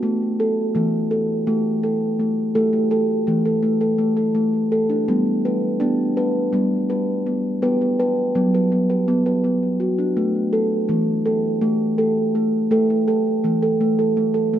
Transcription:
steel tongue drum
0.03 A3
0.40 A4
0.75 E3 A3
1.11 A4
1.47 A3
1.83 A4
2.19 A3
2.55 A3 A4
2.73 A3
2.91 A4
3.27 E3 A3
3.45 A4
3.63 A3
3.81 A4
3.98 A3
4.17 A4
4.35 A3
4.72 A4
4.90 D4
5.08 G3 B3
5.45 B4
5.80 B3 D4
6.17 B4
6.53 G3 B3
6.90 B4
7.26 B3
7.62 B3 B4
7.81 B3
8.00 B4
8.35 F#3 B3
8.54 B4
8.72 B3
8.90 B4
9.08 B3
9.26 B4
9.44 B3
9.80 F#4
9.98 D4
10.17 A3
10.53 A4
10.89 E3 A3
11.26 A4
11.61 A3
11.98 A4
12.35 A3
12.71 A3 A4
12.90 A3
13.08 A4
13.44 E3 A3
13.62 A4
13.81 A3
13.99 A4
14.17 A3
14.34 A4
14.53 A3

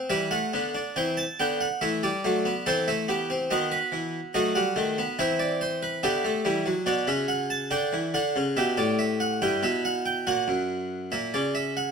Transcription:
harpsichord
0.10 E3 G3 B4 E5
0.31 A3 F#5
0.53 D3 B3
0.75 D4
0.96 E3 C4 G5
1.17 A5
1.40 D3 B3 G5
1.61 F#5
1.81 E3 A3 E5
2.03 G3 D5
2.24 F#3 A3
2.45 B3
2.66 E3 C4 A4 C5
2.88 A3 E5
3.08 B3 G4
3.30 C4
3.51 D#3 B3 F#4 D#5
3.72 B4
3.92 E3
4.34 F#3 A3 F#4 D#5
4.55 G3 F#5
4.76 D#3 A3
4.98 B3
5.19 E3 C4 E4 E5
5.39 D5
5.61 C5
5.82 B4
6.03 D3 B3 G4 E5
6.25 A3
6.45 E3 G3
6.66 F#3
6.86 B2 F#4 D5
7.07 C#3 E5
7.28 F#5
7.50 A5
7.71 D3 D4 G5
7.93 E3
8.14 D3 F#5
8.36 C#3
8.57 B2 G4 E5
8.77 A2 D5
8.99 E5
9.20 F#5
9.42 G2 E4 G5
9.63 B2 E5
9.85 F#5
10.06 G5
10.27 A#2 F#4 F#5
10.48 F#2
11.12 A#2 E5
11.34 C#3 D5
11.55 E5
11.77 F#5

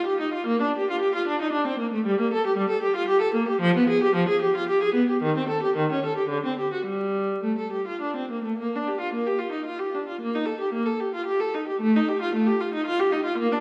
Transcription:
viola
0.07 G4
0.20 D#4
0.34 F4
0.47 A#3
0.62 D4
0.77 G4
0.90 F4
1.01 G4
1.15 F4
1.28 D4
1.42 D#4
1.52 D4
1.67 C4
1.79 A#3
1.94 A3
2.06 G3
2.20 A#3
2.33 A4
2.47 G4
2.57 G3
2.70 A4
2.83 G4
2.96 F4
3.08 G4
3.22 A4
3.34 A#3
3.48 G4
3.61 F3
3.77 B3
3.89 G#4
4.03 G4
4.15 F3
4.29 G#4
4.42 G4
4.56 F4
4.69 G4
4.83 G#4
4.94 B3
5.09 G4
5.22 D#3
5.37 C4
5.49 A4
5.63 G4
5.76 D#3
5.92 C#4
6.05 A4
6.17 G4
6.29 D3
6.45 C4
6.59 G4
6.73 F#4
6.85 G3
7.43 A3
7.58 A4
7.72 G4
7.87 F4
8.01 D4
8.16 C4
8.31 A#3
8.44 A3
8.58 A#3
8.76 D4
8.88 G4
9.01 F4
9.14 A#3
9.26 G4
9.39 F4
9.52 D#4
9.66 F4
9.79 G4
9.94 D4
10.08 F4
10.21 A#3
10.35 D#4
10.46 A4
10.61 G4
10.73 A#3
10.86 A4
11.00 G4
11.15 F4
11.26 G4
11.40 A4
11.54 D#4
11.68 G4
11.81 A3
11.96 D#4
12.09 G4
12.22 F4
12.35 A3
12.47 G4
12.61 F4
12.74 D#4
12.87 F4
13.00 G4
13.12 D#4
13.25 F4
13.38 A#3
13.52 D4

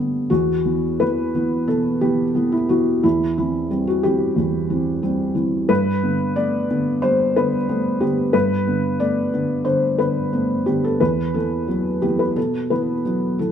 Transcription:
felt piano
Already playing: D3 A3 B3 G4
0.30 E2 F#4
0.65 E3 B3
1.00 E3 B3 B4
1.35 E3 B3
1.68 B2 A4
2.01 E3 B3 G4
2.35 E3 B3
2.52 E4
2.69 E3 B3 F#4
3.03 E2 E4
3.38 E3 C4 E4
3.70 G3 C4
3.87 F#4
4.03 E3 C4 G4
4.36 E2
4.70 E3 C4
5.02 G3 C4
5.35 E3 C4
5.69 G2 B4
6.03 D3 B3
6.36 A3 B3 D5
6.70 D3 B3
7.02 G3 C5
7.36 D3 B3 B4
7.69 A3 B3
8.00 D3 B3 G4
8.33 G2 B4
8.67 D3 B3
9.00 A3 B3 D5
9.33 D3 B3
9.65 D3 C5
9.99 D3 B3 B4
10.33 A3 B3
10.66 D3 B3 G4
10.84 A4
11.00 E2 B4
11.34 E3 B3 A4
11.68 F#3 B3
12.02 E3 B3 G4
12.19 B4
12.36 B2 A4
12.70 E3 B3 B4
13.05 F#3 B3
13.39 E3 B3 A4

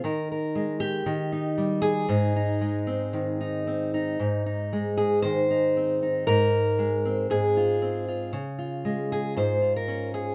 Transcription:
steel-string acoustic guitar
0.04 D#3 A#4
0.32 A#4
0.55 G#3
0.80 G4
1.06 D#3
1.32 D#4
1.58 G3
1.82 G#4
2.09 G#2 D#4
2.36 D#4
2.61 G#3
2.87 C4
3.13 D#3
3.41 D#4
3.67 C4
3.94 D#4
4.20 G#2
4.46 D#4
4.73 G#3
4.97 G#4
5.22 D#3 C5
5.51 D#4
5.77 C4
6.03 D#4
6.27 G#2 A#4
6.79 G#3
7.05 C4
7.30 G#2 G#4
7.57 F4
7.82 C4
8.08 F4
8.33 C#3
8.58 F4
8.85 G#3
9.12 G#4
9.37 G#2 C5
9.62 F4
9.76 A#4
9.88 C#4
10.14 G#4

